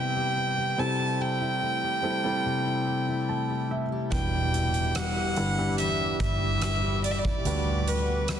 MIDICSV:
0, 0, Header, 1, 7, 480
1, 0, Start_track
1, 0, Key_signature, 1, "minor"
1, 0, Tempo, 833333
1, 452, Time_signature, 4, 2, 24, 8
1, 4837, End_track
2, 0, Start_track
2, 0, Title_t, "Analog synth pad"
2, 0, Program_c, 0, 89
2, 2369, Note_on_c, 0, 86, 72
2, 2370, Note_on_c, 0, 67, 63
2, 2370, Note_on_c, 0, 83, 61
2, 2371, Note_on_c, 0, 76, 57
2, 4271, Note_off_c, 0, 67, 0
2, 4272, Note_off_c, 0, 76, 0
2, 4292, Note_on_c, 0, 55, 66
2, 4294, Note_on_c, 0, 78, 63
2, 4837, Note_off_c, 0, 55, 0
2, 4837, Note_off_c, 0, 78, 0
2, 4837, Note_off_c, 0, 83, 0
2, 4837, Note_off_c, 0, 86, 0
2, 4837, End_track
3, 0, Start_track
3, 0, Title_t, "Violin"
3, 0, Program_c, 1, 40
3, 0, Note_on_c, 1, 79, 81
3, 457, Note_on_c, 1, 81, 82
3, 465, Note_off_c, 1, 79, 0
3, 698, Note_on_c, 1, 79, 80
3, 706, Note_off_c, 1, 81, 0
3, 2135, Note_off_c, 1, 79, 0
3, 2374, Note_on_c, 1, 79, 91
3, 2856, Note_on_c, 1, 78, 84
3, 2865, Note_off_c, 1, 79, 0
3, 3334, Note_off_c, 1, 78, 0
3, 3338, Note_on_c, 1, 76, 80
3, 3558, Note_off_c, 1, 76, 0
3, 3584, Note_on_c, 1, 76, 78
3, 4035, Note_off_c, 1, 76, 0
3, 4057, Note_on_c, 1, 74, 78
3, 4097, Note_on_c, 1, 76, 64
3, 4105, Note_off_c, 1, 74, 0
3, 4137, Note_on_c, 1, 74, 76
3, 4146, Note_off_c, 1, 76, 0
3, 4539, Note_on_c, 1, 71, 72
3, 4548, Note_off_c, 1, 74, 0
3, 4837, Note_off_c, 1, 71, 0
3, 4837, End_track
4, 0, Start_track
4, 0, Title_t, "Steel-string acoustic guitar"
4, 0, Program_c, 2, 25
4, 0, Note_on_c, 2, 48, 67
4, 0, Note_on_c, 2, 55, 46
4, 0, Note_on_c, 2, 59, 48
4, 0, Note_on_c, 2, 67, 51
4, 90, Note_off_c, 2, 67, 0
4, 92, Note_on_c, 2, 67, 54
4, 205, Note_off_c, 2, 59, 0
4, 212, Note_on_c, 2, 59, 42
4, 330, Note_off_c, 2, 67, 0
4, 333, Note_on_c, 2, 67, 51
4, 443, Note_off_c, 2, 48, 0
4, 450, Note_on_c, 2, 48, 64
4, 500, Note_off_c, 2, 59, 0
4, 572, Note_on_c, 2, 64, 46
4, 688, Note_off_c, 2, 67, 0
4, 690, Note_on_c, 2, 67, 51
4, 808, Note_off_c, 2, 64, 0
4, 811, Note_on_c, 2, 64, 45
4, 931, Note_off_c, 2, 55, 0
4, 934, Note_on_c, 2, 57, 43
4, 1052, Note_off_c, 2, 67, 0
4, 1054, Note_on_c, 2, 67, 50
4, 1168, Note_off_c, 2, 64, 0
4, 1170, Note_on_c, 2, 64, 45
4, 1291, Note_off_c, 2, 67, 0
4, 1293, Note_on_c, 2, 67, 48
4, 1407, Note_off_c, 2, 48, 0
4, 1414, Note_on_c, 2, 48, 57
4, 1532, Note_off_c, 2, 64, 0
4, 1534, Note_on_c, 2, 64, 41
4, 1653, Note_off_c, 2, 67, 0
4, 1655, Note_on_c, 2, 67, 52
4, 1772, Note_off_c, 2, 64, 0
4, 1774, Note_on_c, 2, 64, 45
4, 1887, Note_off_c, 2, 57, 0
4, 1894, Note_on_c, 2, 57, 41
4, 2010, Note_off_c, 2, 67, 0
4, 2012, Note_on_c, 2, 67, 46
4, 2133, Note_off_c, 2, 64, 0
4, 2135, Note_on_c, 2, 64, 42
4, 2257, Note_off_c, 2, 67, 0
4, 2259, Note_on_c, 2, 67, 50
4, 2420, Note_off_c, 2, 48, 0
4, 2421, Note_off_c, 2, 57, 0
4, 2493, Note_off_c, 2, 64, 0
4, 2495, Note_on_c, 2, 62, 50
4, 2612, Note_off_c, 2, 67, 0
4, 2614, Note_on_c, 2, 64, 47
4, 2732, Note_off_c, 2, 62, 0
4, 2734, Note_on_c, 2, 62, 43
4, 2854, Note_on_c, 2, 55, 45
4, 2966, Note_off_c, 2, 64, 0
4, 2973, Note_on_c, 2, 64, 49
4, 3091, Note_off_c, 2, 62, 0
4, 3093, Note_on_c, 2, 62, 42
4, 3210, Note_off_c, 2, 64, 0
4, 3217, Note_on_c, 2, 64, 50
4, 3336, Note_on_c, 2, 40, 61
4, 3457, Note_off_c, 2, 62, 0
4, 3459, Note_on_c, 2, 62, 47
4, 3570, Note_off_c, 2, 64, 0
4, 3577, Note_on_c, 2, 64, 51
4, 3696, Note_off_c, 2, 62, 0
4, 3699, Note_on_c, 2, 62, 46
4, 3816, Note_off_c, 2, 55, 0
4, 3819, Note_on_c, 2, 55, 47
4, 3930, Note_off_c, 2, 64, 0
4, 3937, Note_on_c, 2, 64, 50
4, 4058, Note_off_c, 2, 62, 0
4, 4061, Note_on_c, 2, 62, 42
4, 4174, Note_off_c, 2, 64, 0
4, 4182, Note_on_c, 2, 64, 53
4, 4298, Note_on_c, 2, 50, 67
4, 4342, Note_off_c, 2, 40, 0
4, 4344, Note_off_c, 2, 64, 0
4, 4411, Note_off_c, 2, 62, 0
4, 4413, Note_on_c, 2, 59, 49
4, 4534, Note_on_c, 2, 66, 52
4, 4552, Note_off_c, 2, 55, 0
4, 4653, Note_off_c, 2, 59, 0
4, 4655, Note_on_c, 2, 59, 44
4, 4774, Note_on_c, 2, 55, 49
4, 4837, Note_off_c, 2, 50, 0
4, 4837, Note_off_c, 2, 55, 0
4, 4837, Note_off_c, 2, 59, 0
4, 4837, Note_off_c, 2, 66, 0
4, 4837, End_track
5, 0, Start_track
5, 0, Title_t, "Grand piano"
5, 0, Program_c, 3, 0
5, 0, Control_c, 3, 64, 127
5, 0, Note_on_c, 3, 55, 53
5, 0, Note_on_c, 3, 60, 50
5, 0, Note_on_c, 3, 64, 47
5, 0, Note_on_c, 3, 67, 60
5, 0, Note_on_c, 3, 71, 62
5, 280, Note_off_c, 3, 55, 0
5, 282, Note_off_c, 3, 60, 0
5, 283, Note_off_c, 3, 64, 0
5, 285, Note_off_c, 3, 67, 0
5, 449, Note_on_c, 3, 55, 56
5, 452, Note_on_c, 3, 60, 50
5, 456, Note_on_c, 3, 48, 51
5, 456, Note_on_c, 3, 64, 48
5, 458, Control_c, 3, 64, 0
5, 458, Note_on_c, 3, 69, 64
5, 463, Note_off_c, 3, 71, 0
5, 564, Control_c, 3, 64, 127
5, 1134, Note_off_c, 3, 55, 0
5, 1136, Note_off_c, 3, 60, 0
5, 1138, Note_off_c, 3, 64, 0
5, 1139, Note_off_c, 3, 69, 0
5, 1150, Note_off_c, 3, 48, 0
5, 1165, Note_on_c, 3, 55, 56
5, 1170, Note_on_c, 3, 60, 50
5, 1173, Note_on_c, 3, 64, 54
5, 1177, Note_on_c, 3, 69, 62
5, 1281, Note_off_c, 3, 55, 0
5, 1284, Note_off_c, 3, 60, 0
5, 1286, Note_off_c, 3, 64, 0
5, 1288, Note_off_c, 3, 69, 0
5, 1289, Note_on_c, 3, 55, 62
5, 1293, Note_on_c, 3, 60, 57
5, 1296, Note_on_c, 3, 64, 58
5, 1298, Note_on_c, 3, 69, 65
5, 1895, Note_on_c, 3, 81, 50
5, 2117, Note_off_c, 3, 81, 0
5, 2137, Note_on_c, 3, 76, 47
5, 2202, Note_off_c, 3, 55, 0
5, 2204, Note_off_c, 3, 60, 0
5, 2206, Note_off_c, 3, 64, 0
5, 2207, Note_off_c, 3, 69, 0
5, 2358, Note_off_c, 3, 76, 0
5, 2371, Note_on_c, 3, 55, 49
5, 2373, Note_on_c, 3, 62, 45
5, 2376, Note_on_c, 3, 47, 45
5, 2376, Note_on_c, 3, 64, 45
5, 2378, Control_c, 3, 64, 0
5, 2382, Note_on_c, 3, 71, 56
5, 2483, Control_c, 3, 64, 127
5, 3055, Note_off_c, 3, 55, 0
5, 3056, Note_off_c, 3, 62, 0
5, 3058, Note_off_c, 3, 64, 0
5, 3060, Note_off_c, 3, 71, 0
5, 3071, Note_off_c, 3, 47, 0
5, 3090, Note_on_c, 3, 55, 51
5, 3092, Note_on_c, 3, 62, 48
5, 3096, Note_on_c, 3, 64, 50
5, 3099, Note_on_c, 3, 71, 62
5, 3202, Note_off_c, 3, 55, 0
5, 3205, Note_off_c, 3, 62, 0
5, 3208, Note_off_c, 3, 64, 0
5, 3209, Note_off_c, 3, 71, 0
5, 3211, Note_on_c, 3, 55, 55
5, 3213, Note_on_c, 3, 62, 48
5, 3218, Note_on_c, 3, 64, 47
5, 3220, Note_on_c, 3, 67, 60
5, 4123, Note_off_c, 3, 55, 0
5, 4124, Note_off_c, 3, 62, 0
5, 4127, Note_off_c, 3, 64, 0
5, 4128, Note_off_c, 3, 67, 0
5, 4293, Note_on_c, 3, 55, 54
5, 4296, Note_on_c, 3, 62, 51
5, 4297, Note_on_c, 3, 50, 46
5, 4299, Note_on_c, 3, 66, 48
5, 4300, Control_c, 3, 64, 0
5, 4302, Note_on_c, 3, 71, 60
5, 4415, Control_c, 3, 64, 127
5, 4837, Note_off_c, 3, 50, 0
5, 4837, Note_off_c, 3, 55, 0
5, 4837, Note_off_c, 3, 62, 0
5, 4837, Note_off_c, 3, 66, 0
5, 4837, Note_off_c, 3, 71, 0
5, 4837, End_track
6, 0, Start_track
6, 0, Title_t, "Fingered electric bass"
6, 0, Program_c, 4, 33
6, 2370, Note_on_c, 4, 28, 76
6, 3091, Note_off_c, 4, 28, 0
6, 3091, Note_on_c, 4, 31, 67
6, 3548, Note_off_c, 4, 31, 0
6, 3571, Note_on_c, 4, 31, 62
6, 4268, Note_off_c, 4, 31, 0
6, 4291, Note_on_c, 4, 38, 84
6, 4837, Note_off_c, 4, 38, 0
6, 4837, End_track
7, 0, Start_track
7, 0, Title_t, "Drums"
7, 2372, Note_on_c, 9, 36, 89
7, 2372, Note_on_c, 9, 42, 70
7, 2430, Note_off_c, 9, 36, 0
7, 2430, Note_off_c, 9, 42, 0
7, 2615, Note_on_c, 9, 42, 49
7, 2673, Note_off_c, 9, 42, 0
7, 2730, Note_on_c, 9, 42, 38
7, 2788, Note_off_c, 9, 42, 0
7, 2851, Note_on_c, 9, 42, 64
7, 2856, Note_on_c, 9, 37, 89
7, 2909, Note_off_c, 9, 42, 0
7, 2913, Note_off_c, 9, 37, 0
7, 3090, Note_on_c, 9, 42, 45
7, 3147, Note_off_c, 9, 42, 0
7, 3331, Note_on_c, 9, 42, 57
7, 3388, Note_off_c, 9, 42, 0
7, 3571, Note_on_c, 9, 36, 70
7, 3573, Note_on_c, 9, 42, 50
7, 3629, Note_off_c, 9, 36, 0
7, 3631, Note_off_c, 9, 42, 0
7, 3810, Note_on_c, 9, 42, 68
7, 3814, Note_on_c, 9, 37, 81
7, 3868, Note_off_c, 9, 42, 0
7, 3872, Note_off_c, 9, 37, 0
7, 4056, Note_on_c, 9, 42, 54
7, 4113, Note_off_c, 9, 42, 0
7, 4175, Note_on_c, 9, 36, 72
7, 4232, Note_off_c, 9, 36, 0
7, 4293, Note_on_c, 9, 42, 68
7, 4351, Note_off_c, 9, 42, 0
7, 4536, Note_on_c, 9, 42, 51
7, 4594, Note_off_c, 9, 42, 0
7, 4770, Note_on_c, 9, 42, 67
7, 4774, Note_on_c, 9, 37, 93
7, 4827, Note_off_c, 9, 42, 0
7, 4832, Note_off_c, 9, 37, 0
7, 4837, End_track
0, 0, End_of_file